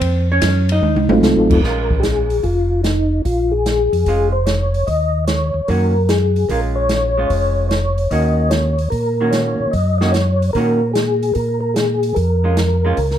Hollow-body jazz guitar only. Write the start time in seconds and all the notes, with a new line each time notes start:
Already playing: C4 C5
0.32 C#4 C#5
0.72 D#4 D#5
1.64 G#3 C#4 F4
4.08 G#3 C#4 F4
5.69 D#3 A#3 C#4 F#4
6.50 G#3 C#4 F4
7.17 G#3 C#4 F4
8.11 D#3 A#3 C#4 F#4
9.20 D#3 A#3 C#4 F#4
10.01 D#3 A#3 C#4 F#4
10.56 D#3 A#3 C#4 F#4
12.44 G#3 C#4 F4
12.85 G#3 C#4 F4